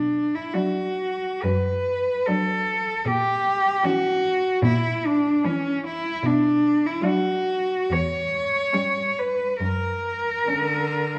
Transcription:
Already playing: B2 D4
0.35 E4
0.53 F#3 D4 F#4
1.42 F#2 B4
2.26 F#3 D4 A4
3.05 A#2 G4
3.83 E3 C#4 F#4
4.62 A#2 E4
5.06 D4
5.44 E3 C#4
5.87 E4
6.23 B2 D4
6.86 E4
7.01 F#3 D4 F#4
7.90 E2 C#5
8.73 G3 C#4
9.18 B4
9.60 F#2 A#4
10.46 D3 C#4
11.15 E3

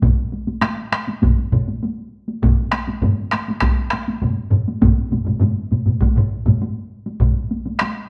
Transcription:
0.02 taiko, taiko low-mid, taiko mid, taiko high
0.32 taiko high
0.47 taiko high
0.61 taiko rim, taiko high
0.92 taiko rim, taiko high
1.07 taiko high
1.22 taiko, taiko low-mid, taiko mid, taiko high
1.52 taiko low-mid, taiko mid, taiko high
1.68 taiko high
1.83 taiko high
2.28 taiko high
2.43 taiko, taiko low-mid, taiko mid, taiko high
2.71 taiko rim, taiko high
2.87 taiko high
3.02 taiko low-mid, taiko mid, taiko high
3.31 taiko rim, taiko high
3.48 taiko high
3.60 taiko rim, taiko, taiko high
3.90 taiko rim, taiko high
4.08 taiko high
4.22 taiko low-mid, taiko mid, taiko high
4.50 taiko low-mid, taiko mid
4.68 taiko high
4.81 taiko, taiko low-mid, taiko mid, taiko high
5.11 taiko low-mid, taiko mid, taiko high
5.26 taiko low-mid, taiko mid, taiko high
5.41 taiko low-mid, taiko mid, taiko high
5.71 taiko low-mid, taiko mid, taiko high
5.86 taiko low-mid, taiko mid, taiko high
6.01 taiko, taiko high
6.16 taiko low-mid, taiko mid
6.46 taiko low-mid, taiko mid, taiko high
6.62 taiko high
7.06 taiko high
7.20 taiko, taiko low-mid, taiko mid, taiko high
7.51 taiko high
7.66 taiko high
7.79 taiko rim, taiko high

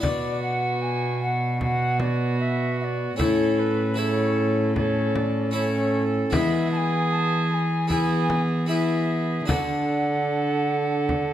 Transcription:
0.00 B2 B3 D4 F#4 D5, frame drum
0.42 F#5
0.81 G#5
1.22 F#5
1.61 B3 F#4 F#5, frame drum
2.00 D5, frame drum
2.39 E5
2.80 D5 E5
3.16 A2 C#4 E4 A4 D5, frame drum
3.23 C#5
3.58 B4
3.94 C#3 C#4 E4 A4 C#5
4.76 C#4 A4 D5, frame drum
4.80 C#5
5.15 D5, frame drum
5.51 C#4 E4 A4 C#5
5.56 C#4 A4
6.30 E3 G#3 B3 E4 E5, frame drum
6.34 B3 G#4
6.71 A5
6.76 G#5
7.11 A5
7.50 G#5 A5
7.88 B3 E4 G#4 G#5, frame drum
8.30 frame drum
8.66 B3 E4 G#4 E5
9.46 D3 D4 F#4 A4 F#5, frame drum
11.09 frame drum

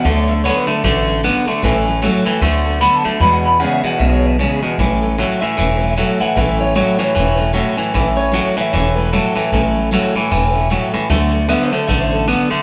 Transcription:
0.03 D2 D3 F#3 A3 B3 F#4 A4 E5
0.17 C#5
0.27 B3 F#4 A4 E5
0.44 D3 F#3 B3 F#4 A4 C#5
0.57 B4
0.67 D3 A3 B3 F#4 A4, muted upright bass stroke
0.83 A1 D3 F#3 A3 B3 F#4 A4
1.07 B3 F#4 A4
1.23 D3 F#3 B3 F#4 A4
1.46 D3 A3 B3 F#4 A4, muted upright bass stroke
1.62 A1 A2 E3 F#3 A3 C#4 A4
1.85 F#3 A3 C#4 A4
2.02 A2 E3 F#3 A3 C#4 A4
2.25 A2 E3 F#3 A3 C#4 A4, muted upright bass stroke
2.41 D2 D3 F#3 A3 B3 F#4 A4
2.65 B3 F#4 A4
2.81 D3 F#3 B3 F#4 A4 B5
2.96 A5
3.04 D3 A3 B3 F#4 A4, muted upright bass stroke
3.20 E2 B2 E3 G#3 B3 C#4 G#4 B5
3.33 F#5
3.44 B3 C#4 G#4 B5
3.60 E2 C#3 E3 G#3 B3 C#4 G#4 F#5
3.73 E5
3.83 E2 B2 B3 C#4 G#4 F#5, muted upright bass stroke
3.98 B1 E2 B2 G#3 B3 C#4 G#4 E5
4.12 C#5
4.22 B3 C#4 G#4 E5
4.39 E2 C#3 E3 G#3 B3 C#4 G#4 C#5
4.53 B4
4.62 E2 B2 B3 C#4 G#4
4.78 A1 A2 E3 F#3 A3 C#4 A4
5.02 F#3 A3 C#4 A4
5.18 A2 E3 F#3 A3 C#4 A4
5.41 A2 E3 F#3 A3 C#4 A4 E5, muted upright bass stroke
5.57 E1 A2 E3 F#3 A3 C#4 A4
5.80 F#3 A3 C#4 A4
5.97 A2 E3 F#3 A3 C#4 A4
6.19 A2 E3 F#3 A3 C#4 A4 F#5, muted upright bass stroke
6.36 A1 A2 E3 F#3 A3 C#4 A4 E5
6.58 F#3 A3 C#4 A4 C#5
6.74 A2 E3 F#3 A3 C#4 A4 C#5
6.97 A2 E3 F#3 A3 C#4 A4 C#5, muted upright bass stroke
7.14 E1 A2 E3 F#3 A3 C#4 A4
7.37 F#3 A3 C#4 A4
7.53 A2 E3 F#3 A3 C#4 A4
7.76 A2 E3 F#3 A3 C#4 A4, muted upright bass stroke
7.93 A1 A2 E3 F#3 A3 C#4 A4
8.15 F#3 A3 C#4 A4 C#5
8.32 A2 E3 F#3 A3 C#4 A4
8.55 A2 E3 F#3 A3 C#4 A4 E5, muted upright bass stroke
8.72 E1 A2 E3 F#3 A3 C#4 A4 C#5
8.95 F#3 A3 C#4 A4 B4
9.12 A2 E3 F#3 A3 C#4 A4
9.35 A2 E3 F#3 A3 C#4 A4, muted upright bass stroke
9.52 A1 A2 E3 F#3 A3 C#4 A4
9.74 F#3 A3 C#4 A4
9.91 A2 E3 F#3 A3 C#4 A4
10.14 A2 E3 F#3 A3 C#4 A4, muted upright bass stroke
10.30 E1 A2 E3 F#3 A3 C#4 A4
10.54 F#3 A3 C#4 A4
10.70 A2 E3 F#3 A3 C#4 A4
10.93 A2 E3 F#3 A3 C#4 A4, muted upright bass stroke
11.10 D2 D3 F#3 A3 B3 F#4 A4
11.32 B3 F#4 A4
11.48 D3 F#3 B3 F#4 A4 E5
11.63 C5
11.71 D3 A3 B3 F#4 A4, muted upright bass stroke
11.87 A1 D3 F#3 A3 B3 F#4 A4 E5
12.01 C5
12.10 B3 F#4 A4
12.27 D3 F#3 B3 D4 F#4 A4
12.50 D3 A3 B3 F#4 A4, muted upright bass stroke

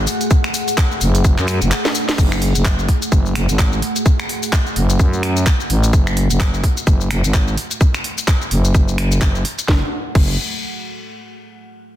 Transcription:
Already playing: A3 G#4 F#5
0.07 open hi-hat, shaker
0.21 closed hi-hat, shaker
0.31 kick, closed hi-hat, shaker
0.44 finger snap, shaker
0.54 open hi-hat, shaker
0.68 open hi-hat, shaker
0.78 kick, clap, closed hi-hat, shaker
0.91 shaker
1.01 F#1, open hi-hat, shaker
1.15 closed hi-hat, shaker
1.24 F#1, kick, closed hi-hat, shaker
1.38 F#2, clap, shaker
1.48 finger snap, open hi-hat, shaker
1.61 F#1, closed hi-hat, shaker
1.71 clap, closed hi-hat, shaker
1.85 snare, shaker
1.95 open hi-hat, shaker
2.09 snare, closed hi-hat, shaker
2.18 F#1 A3 G#4 F#5, kick, closed hi-hat, crash, shaker
2.32 finger snap, shaker
2.42 open hi-hat
2.55 F#1, closed hi-hat, shaker
2.65 kick, clap, closed hi-hat, shaker
2.79 shaker
2.89 kick, open hi-hat
3.02 closed hi-hat, shaker
3.12 F#1, kick, closed hi-hat, shaker
3.26 shaker
3.35 F#1, finger snap, open hi-hat
3.49 G#1, closed hi-hat, shaker
3.59 kick, clap, closed hi-hat, shaker
3.73 shaker
3.82 open hi-hat
3.96 closed hi-hat, shaker
4.06 kick, closed hi-hat, shaker
4.20 finger snap, shaker
4.29 open hi-hat
4.43 open hi-hat, shaker
4.53 kick, clap, closed hi-hat, shaker
4.67 shaker
4.76 F#1, open hi-hat
4.90 closed hi-hat, shaker
4.99 F#2, kick, closed hi-hat, shaker
5.13 shaker
5.23 finger snap, open hi-hat
5.37 closed hi-hat, shaker
5.46 kick, clap, closed hi-hat, shaker
5.60 shaker
5.70 A1, open hi-hat
5.84 closed hi-hat, shaker
5.93 F#1 F#4, kick, closed hi-hat, shaker
6.07 finger snap, shaker
6.17 open hi-hat
6.30 F#1, closed hi-hat, shaker
6.40 kick, clap, closed hi-hat, shaker
6.54 shaker
6.64 kick, open hi-hat
6.77 closed hi-hat, shaker
6.87 F#1, kick, closed hi-hat, shaker
7.01 shaker
7.10 F#1, finger snap, open hi-hat
7.24 G#1, closed hi-hat, shaker
7.34 kick, clap, closed hi-hat, shaker
7.48 shaker
7.57 open hi-hat
7.71 closed hi-hat, shaker
7.81 kick, closed hi-hat, shaker
7.94 finger snap, shaker
8.04 open hi-hat
8.18 open hi-hat, shaker
8.28 kick, clap, closed hi-hat, shaker
8.41 shaker
8.51 F#1, open hi-hat
8.65 closed hi-hat, shaker
8.75 F#1, kick, closed hi-hat, shaker
8.88 shaker
8.98 finger snap, open hi-hat
9.12 closed hi-hat, shaker
9.21 F#1, kick, clap, closed hi-hat, shaker
9.35 shaker
9.45 open hi-hat
9.59 closed hi-hat, shaker
9.68 F#1, kick, snare
10.15 F#1, kick, crash

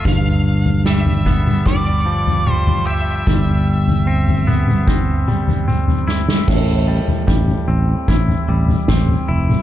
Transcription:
0.05 G1 G2 F5, kick, floor tom
0.66 floor tom
0.86 G3 E5, snare
1.06 floor tom
1.26 B3, kick, mid tom
1.47 mid tom
1.66 G3 D5, kick, floor tom
2.06 F3
2.27 floor tom
2.47 G3, mid tom
2.52 C5
2.67 floor tom
2.87 G4 E5
3.27 G1 G3, kick, floor tom
3.88 floor tom
4.07 C4
4.28 floor tom
4.47 B3, mid tom
4.68 mid tom
4.87 C4, kick, floor tom
5.28 G3, mid tom
5.48 floor tom
5.68 C4, mid tom
5.88 floor tom
6.08 E4, snare
6.29 snare
6.48 A1 A2, kick, floor tom, crash
6.88 G3
7.08 floor tom
7.27 A1 G3, kick
7.48 floor tom
7.68 A1 C4
8.08 A1 E4, kick
8.28 floor tom
8.48 A1 G3
8.68 floor tom
8.88 A1 C4, kick, snare, mid tom
9.09 floor tom
9.28 F1 E4
9.49 mid tom

